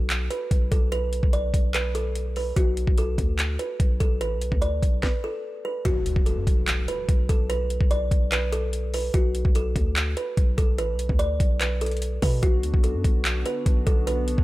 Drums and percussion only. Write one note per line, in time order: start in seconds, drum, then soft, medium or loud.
0.10 clap loud
0.10 closed hi-hat medium
0.31 closed hi-hat medium
0.51 kick loud
0.51 closed hi-hat medium
0.72 kick loud
0.72 closed hi-hat medium
0.92 closed hi-hat medium
1.13 closed hi-hat medium
1.23 kick loud
1.33 closed hi-hat medium
1.54 kick medium
1.54 closed hi-hat medium
1.74 clap loud
1.74 closed hi-hat medium
1.95 closed hi-hat medium
2.15 closed hi-hat medium
2.36 open hi-hat medium
2.57 kick loud
2.57 closed hi-hat medium
2.77 closed hi-hat medium
2.87 kick loud
2.98 closed hi-hat medium
3.18 kick medium
3.18 closed hi-hat medium
3.39 clap loud
3.39 closed hi-hat medium
3.59 closed hi-hat medium
3.80 kick loud
3.80 closed hi-hat medium
4.00 kick loud
4.00 closed hi-hat medium
4.21 closed hi-hat medium
4.41 closed hi-hat medium
4.52 kick loud
4.62 closed hi-hat medium
4.83 kick medium
4.83 closed hi-hat medium
5.03 kick loud
5.03 snare medium
5.85 kick loud
5.85 closed hi-hat medium
6.06 closed hi-hat medium
6.16 kick loud
6.26 closed hi-hat medium
6.47 kick medium
6.47 closed hi-hat medium
6.68 clap loud
6.68 closed hi-hat medium
6.88 closed hi-hat medium
7.09 kick loud
7.09 closed hi-hat medium
7.29 kick loud
7.29 closed hi-hat medium
7.50 closed hi-hat medium
7.70 closed hi-hat medium
7.81 kick loud
7.91 closed hi-hat medium
8.11 kick medium
8.11 closed hi-hat medium
8.32 clap loud
8.32 closed hi-hat medium
8.52 closed hi-hat medium
8.73 closed hi-hat medium
8.94 open hi-hat medium
9.14 kick loud
9.14 closed hi-hat medium
9.35 closed hi-hat medium
9.45 kick loud
9.55 closed hi-hat medium
9.76 kick medium
9.76 closed hi-hat medium
9.96 clap loud
9.96 closed hi-hat medium
10.17 closed hi-hat medium
10.37 kick loud
10.37 closed hi-hat medium
10.58 kick loud
10.58 closed hi-hat medium
10.78 closed hi-hat medium
10.99 closed hi-hat medium
11.09 kick loud
11.19 closed hi-hat medium
11.40 kick medium
11.40 closed hi-hat medium
11.61 clap loud
11.61 closed hi-hat medium
11.81 closed hi-hat medium
11.86 closed hi-hat medium
11.91 closed hi-hat medium
11.97 closed hi-hat soft
12.02 closed hi-hat medium
12.22 kick loud
12.22 open hi-hat medium
12.43 kick loud
12.43 closed hi-hat medium
12.63 closed hi-hat medium
12.74 kick loud
12.84 closed hi-hat medium
13.04 kick medium
13.04 closed hi-hat medium
13.25 clap loud
13.25 closed hi-hat medium
13.46 closed hi-hat medium
13.66 kick loud
13.66 closed hi-hat medium
13.87 kick loud
13.87 closed hi-hat medium
14.07 closed hi-hat medium
14.28 closed hi-hat medium
14.38 kick loud